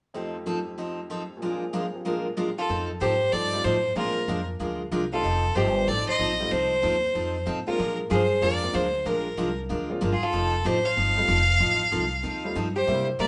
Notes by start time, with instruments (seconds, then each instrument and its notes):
0.14 upright piano F2 F3 A3 D#4 G4, steel-string acoustic guitar F3 C4 D#4 A4
0.46 steel-string acoustic guitar F3 C4 D#4 A4
0.78 steel-string acoustic guitar F3 C4 D#4 A4
1.10 steel-string acoustic guitar F3 C4 D#4 A4
1.37 upright piano A#2 F3
1.42 steel-string acoustic guitar A#2 F3 G#3 D4 F4 A#4, upright piano C4 D4
1.48 upright piano G#4
1.73 steel-string acoustic guitar A#2 F3 G#3 D4 F4 A#4
1.93 upright piano F3 A#3 C4 G4
2.05 steel-string acoustic guitar A#2 F3 G#3 D4 F4 A#4
2.37 steel-string acoustic guitar A#2 F3 G#3 D4 F4 A#4
2.58 hollow-body jazz guitar F4, fiddle A4
2.69 upright bass F2, steel-string acoustic guitar F3 C4 D#4 A4
3.00 upright bass G#2, steel-string acoustic guitar F3 C4 D#4 A4, hollow-body jazz guitar G4, fiddle C5
3.32 upright bass G2, steel-string acoustic guitar F3 C4 D#4 A4, hollow-body jazz guitar A4, fiddle D5
3.52 upright piano G3 A3 C4 D#4 F4
3.64 upright bass A2, steel-string acoustic guitar F3 C4 D#4 A4, hollow-body jazz guitar G4, fiddle C5
3.96 upright bass A#2, steel-string acoustic guitar F3 G#3 D4 F4 A#4, upright piano G#3 A#3 C4 D4 F4, hollow-body jazz guitar F4, fiddle A#4
4.28 upright bass F2, steel-string acoustic guitar F3 G#3 D4 F4 A#4
4.60 upright bass D2, steel-string acoustic guitar F3 G#3 D4 F4 A#4
4.91 upright bass C2, steel-string acoustic guitar F3 G#3 D4 F4 A#4
5.12 upright piano G3 A3 C4 D#4 F4, hollow-body jazz guitar F4, fiddle A4
5.23 upright bass F1, steel-string acoustic guitar F3 C4 D#4 A4
5.55 upright bass G1, steel-string acoustic guitar F3 C4 D#4 A4, hollow-body jazz guitar G4, fiddle C5
5.87 upright bass A1, steel-string acoustic guitar F3 C4 D#4 A4, hollow-body jazz guitar A4, fiddle D5
6.08 hollow-body jazz guitar C5, fiddle D#5, muted upright bass stroke
6.18 upright bass A#1, steel-string acoustic guitar F3 C4 D#4 A4
6.40 upright piano G3 A3 C4 D#4 F4
6.51 upright bass C2, steel-string acoustic guitar F3 C4 D#4 A4, hollow-body jazz guitar G4, fiddle C5
6.82 upright bass D#2, steel-string acoustic guitar F3 C4 D#4 A4
7.15 upright bass F2, steel-string acoustic guitar F3 C4 D#4 A4
7.46 upright bass A2, steel-string acoustic guitar F3 C4 D#4 A4
7.67 upright piano G#3 A#3 C4 D4 F4, hollow-body jazz guitar F4, fiddle A#4, muted upright bass stroke
7.78 upright bass A#2, steel-string acoustic guitar F3 G#3 D4 F4 A#4
8.10 upright bass G2, steel-string acoustic guitar F3 G#3 D4 F4 A#4, hollow-body jazz guitar G#4, fiddle C5
8.41 upright bass F2, steel-string acoustic guitar F3 G#3 D4 F4 A#4, hollow-body jazz guitar A#4, fiddle D5
8.63 upright piano G#3 A#3 C4 D4 F4
8.73 upright bass D2, steel-string acoustic guitar F3 G#3 D4 F4 A#4, hollow-body jazz guitar G#4, fiddle C5
9.05 upright bass A#1, steel-string acoustic guitar F3 G#3 D4 F4 A#4, hollow-body jazz guitar F4, fiddle A#4
9.37 upright bass C2, steel-string acoustic guitar F3 G#3 D4 F4 A#4
9.69 upright bass D2, steel-string acoustic guitar F3 G#3 D4 F4 A#4
9.90 upright piano G#3 A#3 C4 D4 F4
10.01 upright bass G1, steel-string acoustic guitar F3 G#3 D4 F4 A#4
10.13 hollow-body jazz guitar F4, fiddle G#4
10.22 hollow-body jazz guitar F4, fiddle A4, muted upright bass stroke
10.33 upright bass F1, steel-string acoustic guitar F3 C4 D#4 A4
10.65 upright bass A1, steel-string acoustic guitar F3 C4 D#4 A4, hollow-body jazz guitar G4, fiddle C5
10.86 hollow-body jazz guitar C5, fiddle F5
10.96 upright bass G1, steel-string acoustic guitar F3 C4 D#4 A4
11.16 upright piano G3 A3 C4 D#4 F4
11.28 upright bass F1, steel-string acoustic guitar F3 C4 D#4 A4
11.60 upright bass A1, steel-string acoustic guitar F3 C4 D#4 A4
11.91 upright bass C2, steel-string acoustic guitar F3 C4 D#4 A4
12.23 upright bass D#2, steel-string acoustic guitar F3 C4 D#4 A4
12.44 upright piano G3 A3 C4 D#4 F4
12.55 upright bass G2, steel-string acoustic guitar F3 C4 D#4 A4
12.76 hollow-body jazz guitar G4, fiddle C5
12.87 steel-string acoustic guitar C3 G3 A#3 E4 G4, upright bass C3, upright piano G3 A#3 C4 D4 E4
13.19 upright bass A#2, steel-string acoustic guitar C3 G3 A#3 E4 G4, hollow-body jazz guitar A#4, fiddle D5